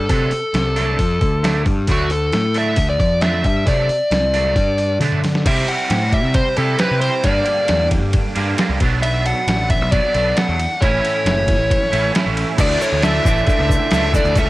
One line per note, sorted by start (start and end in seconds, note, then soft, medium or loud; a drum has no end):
0.09 0.30 C3 medium
0.09 0.31 D3 medium
0.09 0.31 F#3 medium
0.09 0.31 A3 medium
0.09 0.31 C4 medium
0.09 0.31 D4 medium
0.09 1.62 A4 medium
0.09 kick loud
0.09 open hi-hat medium
0.31 muted clean electric guitar stroke medium
0.31 muted distorted electric guitar stroke soft
0.31 muted picked electric bass stroke soft
0.31 open hi-hat soft
0.54 0.96 C2 medium
0.54 0.98 C3 loud
0.54 muted distorted electric guitar stroke soft
0.54 snare loud
0.54 open hi-hat medium
0.76 0.98 D3 medium
0.76 0.98 F#3 medium
0.76 0.98 A3 medium
0.76 0.99 D4 medium
0.76 open hi-hat soft
0.98 1.20 F2 medium
0.98 1.20 F3 loud
0.98 muted distorted electric guitar stroke soft
0.98 kick medium
0.98 open hi-hat medium
1.21 1.63 D2 medium
1.21 1.65 D3 loud
1.21 muted distorted electric guitar stroke medium
1.21 kick medium
1.21 open hi-hat soft
1.43 1.66 D3 medium
1.43 1.65 F#3 medium
1.43 1.65 A3 loud
1.43 1.65 D4 medium
1.43 snare loud
1.43 open hi-hat medium
1.65 1.87 G2 medium
1.65 1.87 G3 loud
1.65 muted distorted electric guitar stroke soft
1.65 kick loud
1.65 open hi-hat soft
1.87 2.30 D2 medium
1.87 2.32 D3 medium
1.87 2.11 D3 medium
1.87 2.10 F#3 medium
1.87 2.09 A3 medium
1.87 2.09 D4 medium
1.87 kick loud
1.87 open hi-hat medium
1.91 2.13 F#4 medium
2.10 2.57 A4 medium
2.10 muted distorted electric guitar stroke soft
2.10 open hi-hat soft
2.32 2.75 A2 medium
2.32 2.77 A3 loud
2.32 muted distorted electric guitar stroke soft
2.32 snare medium
2.32 open hi-hat medium
2.55 2.76 D3 medium
2.55 2.76 F#3 medium
2.55 2.76 A3 medium
2.55 2.76 D4 medium
2.55 2.89 E5 loud
2.55 open hi-hat soft
2.76 2.98 D2 medium
2.76 2.98 D3 loud
2.76 muted distorted electric guitar stroke soft
2.76 kick medium
2.76 open hi-hat medium
2.90 2.99 D5 medium
2.99 3.41 F2 medium
2.99 3.43 F3 medium
2.99 3.22 D5 medium
2.99 muted distorted electric guitar stroke soft
2.99 kick medium
2.99 open hi-hat soft
3.21 3.45 D3 loud
3.21 3.45 F#3 medium
3.21 3.44 A3 medium
3.21 3.44 D4 medium
3.21 3.44 E5 medium
3.21 snare loud
3.21 open hi-hat medium
3.44 3.66 G2 medium
3.44 3.66 G3 loud
3.44 3.67 E5 loud
3.44 muted distorted electric guitar stroke soft
3.44 kick medium
3.44 open hi-hat soft
3.66 3.88 C3 medium
3.66 3.89 D3 medium
3.66 3.88 F#3 medium
3.66 3.88 A3 medium
3.66 3.89 C4 loud
3.66 3.87 D4 loud
3.66 4.97 D5 medium
3.66 kick loud
3.66 open hi-hat medium
3.88 muted distorted electric guitar stroke soft
3.88 muted picked electric bass stroke soft
3.88 muted clean electric guitar stroke medium
3.88 open hi-hat soft
4.11 4.53 C2 medium
4.11 4.56 C3 loud
4.11 muted distorted electric guitar stroke soft
4.11 snare loud
4.11 open hi-hat medium
4.33 4.54 D3 medium
4.33 4.54 F#3 medium
4.33 4.54 A3 medium
4.33 4.55 D4 medium
4.33 open hi-hat soft
4.55 4.98 G2 medium
4.55 5.00 G3 loud
4.55 muted distorted electric guitar stroke soft
4.55 kick loud
4.55 open hi-hat medium
4.78 muted distorted electric guitar stroke soft
4.78 open hi-hat soft
5.00 5.42 D3 medium
5.00 5.23 D3 medium
5.00 5.22 F#3 medium
5.00 5.22 A3 medium
5.00 5.45 D4 loud
5.00 5.21 D4 medium
5.00 open hi-hat medium
5.00 high tom medium
5.12 mid tom medium
5.22 muted distorted electric guitar stroke soft
5.22 snare medium
5.22 open hi-hat soft
5.35 snare medium
5.45 6.56 C3 medium
5.45 6.58 C3 medium
5.45 5.63 C3 medium
5.45 6.56 G3 medium
5.45 6.56 C4 loud
5.45 6.56 E4 medium
5.45 6.56 G4 loud
5.45 5.67 E5 medium
5.45 kick loud
5.45 crash loud
5.45 ride medium
5.67 6.55 G4 medium
5.67 6.14 F#5 loud
5.67 ride medium
5.90 6.24 A2 medium
5.90 6.33 E4 medium
5.90 snare loud
5.90 ride medium
6.12 7.24 G3 medium
6.12 6.34 E5 medium
6.12 kick medium
6.12 ride medium
6.24 6.41 C3 medium
6.34 7.02 E4 medium
6.34 6.57 C5 medium
6.34 kick loud
6.34 ride medium
6.57 6.75 C3 medium
6.57 6.77 C3 medium
6.57 6.78 G3 medium
6.57 6.79 C4 medium
6.57 6.79 E4 medium
6.57 7.24 G4 medium
6.57 6.78 G4 medium
6.57 6.78 A4 medium
6.57 ride medium
6.78 7.23 C3 medium
6.78 7.23 G3 medium
6.78 7.23 C4 medium
6.78 7.25 C4 medium
6.78 7.24 E4 medium
6.78 7.24 G4 medium
6.78 7.01 B4 medium
6.78 snare loud
6.78 ride medium
6.91 7.08 C3 medium
7.01 7.25 E4 medium
7.01 7.25 C5 medium
7.01 ride medium
7.23 8.34 G2 loud
7.23 7.42 G2 medium
7.23 8.36 G2 medium
7.23 8.35 D3 medium
7.23 8.35 G3 medium
7.23 8.35 A#3 loud
7.23 8.34 D4 loud
7.23 7.87 D5 medium
7.23 kick loud
7.23 ride loud
7.46 8.35 G4 medium
7.46 ride medium
7.68 8.02 E2 medium
7.68 8.11 D4 medium
7.68 snare loud
7.68 ride medium
7.90 8.80 G3 medium
7.90 kick medium
7.90 ride medium
8.02 8.20 G2 medium
8.13 8.80 D4 medium
8.13 kick loud
8.13 ride loud
8.35 8.53 G2 medium
8.35 8.56 G2 medium
8.35 8.57 D3 medium
8.35 8.57 G3 medium
8.35 8.57 A#3 medium
8.35 8.57 D4 medium
8.35 8.81 G4 medium
8.35 ride medium
8.58 8.79 G2 medium
8.58 8.80 D3 medium
8.58 8.80 G3 medium
8.58 8.80 A#3 medium
8.58 8.80 D4 medium
8.58 snare loud
8.58 ride loud
8.69 8.78 C2 medium
8.80 9.32 B1 loud
8.80 9.91 B2 medium
8.80 9.02 B2 medium
8.80 9.91 F#3 medium
8.80 9.92 B3 loud
8.80 9.92 D4 medium
8.80 kick loud
8.80 ride medium
9.02 10.15 B2 medium
9.02 9.26 E5 medium
9.02 ride loud
9.25 10.14 A4 medium
9.25 9.67 F#5 loud
9.25 ride medium
9.47 9.82 A1 medium
9.47 9.90 D4 medium
9.47 snare loud
9.47 ride medium
9.70 10.82 F#3 medium
9.70 9.91 E5 loud
9.70 kick medium
9.70 ride medium
9.82 9.99 B1 medium
9.92 10.13 B2 medium
9.92 10.14 F#3 medium
9.92 10.14 B3 medium
9.92 10.57 D4 medium
9.92 10.13 D4 medium
9.92 10.38 D5 medium
9.92 kick loud
9.92 ride medium
10.14 10.32 B1 medium
10.14 10.59 B2 medium
10.14 10.59 F#3 medium
10.14 10.58 B3 medium
10.14 10.58 D4 medium
10.14 11.03 A4 medium
10.14 ride medium
10.37 11.47 A3 medium
10.37 10.79 F#5 loud
10.37 snare loud
10.37 ride medium
10.49 10.66 E2 medium
10.59 10.81 D4 medium
10.59 ride medium
10.81 10.99 A1 loud
10.81 11.91 A2 medium
10.81 11.93 A2 medium
10.81 11.92 E3 medium
10.81 11.92 A3 medium
10.81 11.91 C#4 loud
10.81 11.90 E4 loud
10.81 12.11 C#5 medium
10.81 kick loud
10.81 ride medium
11.03 11.89 A4 medium
11.03 ride medium
11.25 11.59 F#1 medium
11.25 11.68 E4 medium
11.25 snare loud
11.25 ride medium
11.47 12.56 A3 medium
11.47 kick medium
11.47 ride medium
11.59 11.76 A1 medium
11.69 12.33 E4 medium
11.69 kick loud
11.69 ride loud
11.83 snare soft
11.90 12.10 A1 medium
11.90 12.12 A2 medium
11.90 12.12 E3 medium
11.90 12.13 A3 medium
11.90 12.14 C#4 medium
11.90 12.13 E4 medium
11.90 12.57 A4 medium
11.90 ride medium
12.13 12.57 A2 medium
12.13 12.57 E3 medium
12.13 12.57 A3 medium
12.13 12.57 C#4 medium
12.13 12.58 C#4 loud
12.13 12.59 E4 loud
12.13 snare loud
12.13 ride loud
12.26 12.43 A1 medium
12.34 12.58 E4 medium
12.34 ride medium
12.57 12.76 D2 loud
12.57 13.01 D3 medium
12.57 13.01 D3 loud
12.57 13.03 E3 medium
12.57 13.02 E3 loud
12.57 13.03 A3 medium
12.57 13.03 A3 loud
12.57 13.03 D4 medium
12.57 13.02 D4 loud
12.57 13.04 A4 medium
12.57 14.49 A4 medium
12.57 14.35 D5 medium
12.57 14.49 E5 medium
12.57 14.35 D6 medium
12.57 kick loud
12.57 crash loud
12.57 crash medium
12.57 shaker medium
12.61 12.82 D5 medium
12.81 13.03 C#5 medium
12.81 shaker medium
12.93 13.18 D2 medium
13.02 13.24 D3 medium
13.02 13.23 D3 medium
13.02 13.25 E3 medium
13.02 13.26 A3 medium
13.02 13.25 A3 loud
13.02 13.25 D4 medium
13.02 13.26 A4 loud
13.02 13.49 E5 medium
13.02 snare loud
13.02 crash medium
13.02 shaker medium
13.24 13.43 A1 loud
13.24 13.45 D3 medium
13.24 13.46 D3 medium
13.24 13.46 E3 medium
13.24 13.47 A3 medium
13.24 13.47 D4 medium
13.24 13.48 A4 medium
13.24 kick medium
13.24 shaker loud
13.38 shaker soft
13.46 13.89 D3 loud
13.46 13.91 D3 medium
13.46 13.89 E3 loud
13.46 13.91 E3 medium
13.46 13.90 A3 loud
13.46 13.92 A3 loud
13.46 13.90 D4 loud
13.46 13.92 D4 loud
13.46 13.91 A4 loud
13.46 14.12 E5 loud
13.46 kick loud
13.46 crash medium
13.46 shaker medium
13.59 13.76 C#2 loud
13.69 kick medium
13.69 shaker loud
13.90 14.18 C#2 medium
13.90 14.12 D3 medium
13.90 14.12 D3 loud
13.90 14.12 E3 medium
13.90 14.13 E3 loud
13.90 14.13 A3 medium
13.90 14.13 A3 loud
13.90 14.13 D4 medium
13.90 14.14 D4 loud
13.90 14.14 A4 loud
13.90 snare loud
13.90 crash medium
13.90 shaker medium
14.13 14.35 D3 medium
14.13 14.35 E3 medium
14.13 14.35 A3 medium
14.13 14.36 A3 medium
14.13 14.36 D4 loud
14.13 14.36 A4 loud
14.13 14.38 D5 medium
14.13 kick medium
14.13 shaker loud
14.25 14.34 D2 loud
14.25 shaker soft
14.35 14.49 C#2 medium
14.35 14.49 C#3 medium
14.35 14.49 C#3 loud
14.35 14.49 E3 medium
14.35 14.49 E3 loud
14.35 14.49 A3 loud
14.35 14.49 C#4 medium
14.35 14.49 C#4 loud
14.35 14.49 A4 loud
14.35 14.49 C#5 medium
14.35 14.49 C#6 medium
14.35 kick loud
14.35 crash medium
14.35 shaker medium
14.39 14.49 E5 medium